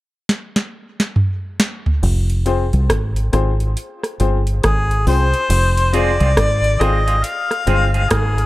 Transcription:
0.29 snare
0.56 snare
1.00 snare
1.16 mid tom
1.60 snare
1.86 floor tom
2.03 F1, crash
2.30 closed hi-hat
2.46 C4 F4 G#4 C5, closed hi-hat
2.73 C2, closed hi-hat
2.90 G#1, kick, cross-stick, closed hi-hat
3.16 closed hi-hat
3.33 G#1 C4 F4 G#4 C5, cross-stick, closed hi-hat
3.60 closed hi-hat
3.77 closed hi-hat
4.03 cross-stick, closed hi-hat
4.20 G1 C4 F4 G#4 C5, closed hi-hat
4.47 closed hi-hat
4.63 G#1 G#4, kick, cross-stick, closed hi-hat
4.91 closed hi-hat
5.07 C2 C4 F4 G#4 C5, open hi-hat
5.34 closed hi-hat
5.50 F1, closed hi-hat, crash
5.77 closed hi-hat
5.93 G#3 C4 F4 G#4 C5 D5, closed hi-hat
6.20 C2 G#3 C4 F4 G#4, closed hi-hat
6.37 G#1, kick, cross-stick, closed hi-hat
6.64 closed hi-hat
6.80 G#1 G#3 C4 F4 G#4 C5 D#5, cross-stick, closed hi-hat
7.07 G#3 C4 F4 G#4, closed hi-hat
7.24 F5, closed hi-hat
7.51 cross-stick, closed hi-hat
7.66 G1 G#3 C4 F4 G#4 C5, closed hi-hat
7.94 G#3 C4 F4 G#4, closed hi-hat
8.11 G#1 G#4, kick, cross-stick, closed hi-hat
8.38 closed hi-hat

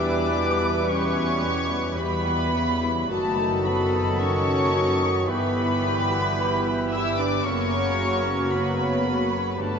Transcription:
Already playing: E2 B2 E3 G3 B3 D4 E4 G4 B4 D5 D6
0.05 B3 E4
0.33 G3 G4
0.60 B3 E4
0.87 G3 C#4 G4 C#5 C#6
1.13 B3 E4
1.41 G3 G4
1.68 B3 E4
1.96 G3 B3 G4 B4 B5
2.00 B2 G3 B3 E4
2.24 B3 E4
2.52 C#3 G3 G4
2.81 B3 E4
3.09 F#1 D#3 F#3 A3 F#4 A4 D#5 A5
3.37 D#4 A4
3.64 B3 F#4 B4 B5
3.93 D#4 A4
4.18 C#4 F#4 C#5 C#6
4.47 D#4 A4
4.74 F#4
5.00 D#4 A4
5.27 G1 E3 G3 B3 E4 G4 B4 B5
5.57 E4 G4
5.83 G4 B4
6.10 E4 G4
6.38 G4 B4
6.65 E4 G4
6.91 E4 G4 B4 E5 E6
7.17 D4 E4 G4 D5 D6
7.43 F#1 C#3 F#3 A#3 C#4 F#4 A#4 C#5 C#6
7.47 A#3 A#4
7.74 C#4 C#5
8.01 A#3 A#4
8.27 C#4 C#5
8.50 A#3 B3 A#4 B4 B5
8.78 C#4 C#5
9.05 A#3 A#4
9.32 C#4 C#5
9.58 G1 D3 G3 A3 B3 D4 G4 A4 B4 A5

